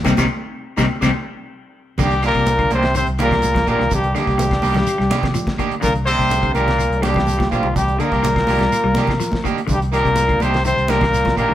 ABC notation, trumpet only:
X:1
M:4/4
L:1/8
Q:1/4=125
K:Cm
V:1 name="Trumpet"
z8 | G B2 c c B2 B | G G6 z | B c2 B2 G2 F |
G B6 z | G B2 c c B2 B |]